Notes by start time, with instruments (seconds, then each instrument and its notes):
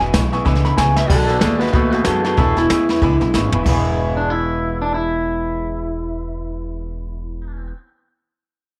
Already playing: upright bass E1
0.00 clean electric guitar E2 B2, steel-string acoustic guitar E3 G#3 B3 E4, upright piano G#5 B5, snare
0.13 upright bass B1, clean electric guitar E2 C#3, steel-string acoustic guitar E3 G#3 B3 E4, upright piano E5 G#5 B5, kick, snare, hi-hat pedal
0.32 clean electric guitar E2 C#3, steel-string acoustic guitar E3 G#3 B3 E4, upright piano E5 G#5 C#6, snare
0.45 upright bass C#2, clean electric guitar E2 D3, steel-string acoustic guitar E2 B2 E3 G#3 B3 E4, upright piano E5 G#5 B5, kick, snare
0.55 snare
0.64 clean electric guitar E2 D3 B5, steel-string acoustic guitar E3 G#3 B3 E4, upright piano E5 G#5 C#6, snare
0.77 upright bass C#2, clean electric guitar E2 C#3 G#5, steel-string acoustic guitar E3 G#3 B3 E4, upright piano E5 G#5 B5, kick, snare, hi-hat pedal
0.96 clean electric guitar E2 C#3 E5, steel-string acoustic guitar E3 G#3 B3 E4, upright piano E5 G#5 B5, snare
1.08 upright bass B1, clean electric guitar B2 F#3 A4 D5, steel-string acoustic guitar B2 D#3 A3 B3 F#4, upright piano D#5 F#5 B5, kick, snare, crash
1.27 steel-string acoustic guitar B3 F#4, clean electric guitar A4 D5, upright piano D#5 F#5 B5, snare
1.31 steel-string acoustic guitar A3
1.39 upright bass D#2, clean electric guitar B2 G#3 A4 D5, steel-string acoustic guitar D#3 A3, upright piano D#5 F#5 B5, snare, hi-hat pedal
1.44 steel-string acoustic guitar B3 F#4
1.59 clean electric guitar B2 G#3 F#4 B4, steel-string acoustic guitar B3 F#4, upright piano D#5 F#5 B5, snare
1.63 steel-string acoustic guitar A3
1.67 snare
1.72 upright bass D#2, clean electric guitar B2 A3 F#4 B4, steel-string acoustic guitar B2 D#3 A3 B3 F#4, upright piano D#5 F#5 B5, kick, snare
1.91 steel-string acoustic guitar B3 F#4, clean electric guitar F#4 B4, upright piano D#5 F#5 G#5, snare
1.95 steel-string acoustic guitar A3
2.05 upright bass F#2, clean electric guitar B2 G#3 F#4 A4, steel-string acoustic guitar D#3 A3 B3 F#4, upright piano D#5 F#5 C#6, snare, hi-hat pedal
2.24 clean electric guitar B2 G#3 F#4 A4, steel-string acoustic guitar A3 B3 F#4, upright piano D#5 F#5 B5, snare
2.37 upright bass E1, clean electric guitar E2 B2 E4 A4, steel-string acoustic guitar E2 B2 E3 G#3 B3 E4, upright piano E5 G#5 B5, kick, snare
2.57 steel-string acoustic guitar E3 G#3 B3 E4, clean electric guitar E4, upright piano E5 G#5 B5, snare
2.70 upright bass E2, clean electric guitar E2 C#3, steel-string acoustic guitar E3 G#3 B3 E4, upright piano E5 G#5 B5, snare, hi-hat pedal
2.88 clean electric guitar E2 C#3, steel-string acoustic guitar E3 G#3 B3 E4, upright piano E5 G#5 B5, snare
2.96 snare
3.02 upright bass C#2, steel-string acoustic guitar E2 B2 E3 G#3 B3 E4, clean electric guitar E2 D3, upright piano E5 G#5 B5, kick, snare
3.20 upright bass B1, steel-string acoustic guitar E3 G#3 B3 E4, upright piano E5 G#5 B5, snare
3.33 upright bass G#1, clean electric guitar E2 C#3, steel-string acoustic guitar E3 G#3 B3 E4, upright piano E5 G#5 B5, snare, hi-hat pedal
3.52 upright bass E1, clean electric guitar E2 C#3, steel-string acoustic guitar E3 G#3 B3 E4, upright piano E5 G#5 B5, floor tom
3.63 upright bass E1, steel-string acoustic guitar E2 B2 E3, clean electric guitar E3 G#3 B3, upright piano E5 G#5, kick, crash
3.68 steel-string acoustic guitar G#3 B3 E4, clean electric guitar E4 G#4, upright piano B5
4.17 clean electric guitar D4
4.30 clean electric guitar E4
4.82 clean electric guitar D4
4.94 clean electric guitar E4